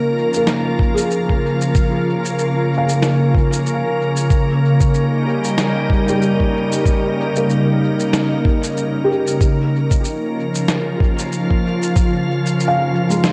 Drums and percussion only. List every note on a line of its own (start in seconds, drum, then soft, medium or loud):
0.33 shaker soft
0.47 snare medium
0.47 shaker soft
0.79 kick loud
0.97 shaker medium
1.11 shaker soft
1.29 kick medium
1.61 shaker soft
1.75 kick loud
1.75 shaker soft
2.25 shaker medium
2.39 shaker soft
2.89 shaker soft
3.03 snare medium
3.03 shaker soft
3.35 kick loud
3.53 shaker soft
3.66 shaker soft
4.16 shaker medium
4.30 kick loud
4.30 shaker soft
4.80 kick loud
4.80 shaker soft
4.94 shaker soft
5.44 shaker soft
5.58 snare medium
5.58 shaker soft
5.90 kick loud
6.08 shaker soft
6.22 shaker soft
6.40 kick medium
6.72 shaker medium
6.86 kick loud
6.86 shaker soft
7.36 shaker soft
7.49 shaker soft
8.00 shaker soft
8.13 snare medium
8.13 shaker soft
8.45 kick loud
8.63 shaker soft
8.77 shaker soft
9.27 shaker soft
9.41 kick loud
9.41 shaker soft
9.91 kick medium
9.91 shaker soft
10.05 shaker soft
10.55 shaker soft
10.68 snare medium
10.68 shaker soft
11.00 kick loud
11.19 shaker soft
11.32 shaker soft
11.51 kick medium
11.82 shaker soft
11.96 kick loud
11.96 shaker soft
12.46 shaker soft
12.60 shaker soft
13.10 shaker soft
13.24 snare medium
13.24 shaker soft